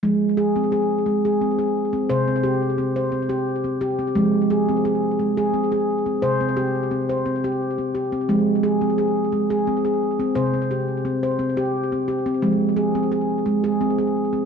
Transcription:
X:1
M:3/4
L:1/16
Q:1/4=87
K:Fm
V:1 name="Handpan"
A,2 A C A2 A, A C A2 C | c C G2 C c C G2 C G C | A,2 A C A2 A, A C A2 C | c C G2 C c C G2 C G C |
A,2 A C A2 A, A C A2 C | c C G2 C c C G2 C G C | A,2 A C A2 A, A C A2 C |]
V:2 name="Handpan" clef=bass
F,12 | C,12 | F,12 | C,12 |
F,12 | C,12 | F,12 |]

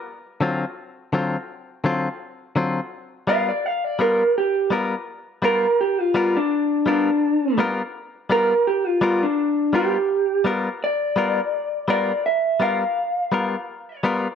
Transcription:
X:1
M:4/4
L:1/16
Q:"Swing 16ths" 1/4=84
K:Ddor
V:1 name="Clean electric guitar"
z16 | z2 f d f d ^A2 G2 z4 A2 | G F2 D3 D4 z4 ^A2 | G F2 D3 G4 z2 d4- |
d2 d2 e2 f8 z2 |]
V:2 name="Clean electric guitar"
z2 [D,^F,C^E]2 z2 [D,F,CE]2 z2 [D,F,CE]2 z2 [D,F,CE]2 | z2 [G,B,F^A]2 z2 [G,B,FA]2 z2 [G,B,FA]2 z2 [G,B,FA]2 | z2 [G,B,F^A]2 z2 [G,B,FA]2 z2 [G,B,FA]2 z2 [G,B,FA]2 | z2 [G,B,F^A]2 z2 [G,B,FA]2 z2 [G,B,FA]2 z2 [G,B,FA]2 |
z2 [G,B,F^A]2 z2 [G,B,FA]2 z2 [G,B,FA]2 z2 [G,B,FA]2 |]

